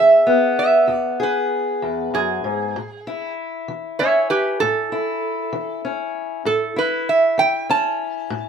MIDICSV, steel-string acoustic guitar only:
0, 0, Header, 1, 2, 480
1, 0, Start_track
1, 0, Tempo, 618557
1, 2131, Time_signature, 12, 3, 24, 8
1, 6587, End_track
2, 0, Start_track
2, 0, Title_t, "Steel-string acoustic guitar"
2, 0, Program_c, 0, 25
2, 0, Note_on_c, 0, 52, 60
2, 0, Note_on_c, 0, 59, 52
2, 0, Note_on_c, 0, 68, 64
2, 197, Note_off_c, 0, 59, 0
2, 206, Note_on_c, 0, 59, 63
2, 401, Note_off_c, 0, 52, 0
2, 680, Note_on_c, 0, 40, 70
2, 919, Note_off_c, 0, 68, 0
2, 929, Note_on_c, 0, 68, 69
2, 1117, Note_off_c, 0, 40, 0
2, 1414, Note_on_c, 0, 40, 54
2, 1652, Note_off_c, 0, 40, 0
2, 1658, Note_on_c, 0, 42, 65
2, 1891, Note_off_c, 0, 42, 0
2, 1894, Note_on_c, 0, 44, 55
2, 2101, Note_off_c, 0, 68, 0
2, 2130, Note_off_c, 0, 59, 0
2, 2132, Note_off_c, 0, 44, 0
2, 2142, Note_on_c, 0, 45, 76
2, 2383, Note_on_c, 0, 64, 57
2, 2569, Note_off_c, 0, 45, 0
2, 2858, Note_on_c, 0, 52, 62
2, 3111, Note_on_c, 0, 61, 64
2, 3286, Note_off_c, 0, 52, 0
2, 3583, Note_on_c, 0, 45, 80
2, 3815, Note_off_c, 0, 64, 0
2, 3818, Note_on_c, 0, 64, 62
2, 4009, Note_off_c, 0, 45, 0
2, 4288, Note_on_c, 0, 52, 60
2, 4527, Note_off_c, 0, 61, 0
2, 4537, Note_on_c, 0, 61, 54
2, 4721, Note_off_c, 0, 52, 0
2, 4984, Note_off_c, 0, 61, 0
2, 5008, Note_on_c, 0, 45, 77
2, 5245, Note_off_c, 0, 64, 0
2, 5248, Note_on_c, 0, 64, 60
2, 5440, Note_off_c, 0, 45, 0
2, 5725, Note_on_c, 0, 52, 66
2, 5971, Note_on_c, 0, 61, 61
2, 6157, Note_off_c, 0, 52, 0
2, 6444, Note_on_c, 0, 45, 81
2, 6587, Note_off_c, 0, 45, 0
2, 6587, Note_off_c, 0, 61, 0
2, 6587, Note_off_c, 0, 64, 0
2, 6587, End_track
0, 0, End_of_file